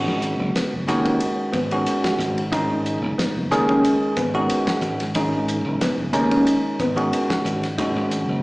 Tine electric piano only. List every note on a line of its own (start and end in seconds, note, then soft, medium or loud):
0.00 0.74 D#3 medium
0.00 0.74 G#3 medium
0.00 0.74 C#4 medium
0.00 0.74 F#4 medium
0.88 1.58 D#3 medium
0.88 1.58 G#3 medium
0.88 1.58 C#4 medium
0.88 1.58 F#4 medium
1.72 2.41 D#3 medium
1.72 2.41 G#3 medium
1.72 2.42 C#4 medium
1.72 2.42 F#4 medium
2.52 3.38 D#3 medium
2.52 3.38 G#3 medium
2.52 3.37 C#4 medium
2.52 3.38 D#4 medium
3.52 4.22 D#3 medium
3.52 4.22 G#3 medium
3.52 4.22 C#4 medium
3.52 4.22 G#4 medium
4.34 5.04 D#3 medium
4.34 5.04 G#3 medium
4.34 5.04 C#4 medium
4.34 5.04 F#4 medium
5.16 6.01 D#3 medium
5.16 6.00 G#3 medium
5.16 6.00 C#4 medium
5.16 6.01 D#4 medium
6.13 6.84 D#3 medium
6.13 6.84 G#3 medium
6.13 6.84 C#4 medium
6.13 6.84 D#4 medium
6.96 7.66 D#3 medium
6.96 7.67 G#3 medium
6.96 7.67 C#4 medium
6.96 7.67 F#4 medium
7.79 8.43 D#3 medium
7.79 8.43 G#3 medium
7.79 8.43 C#4 medium
7.79 8.43 F#4 medium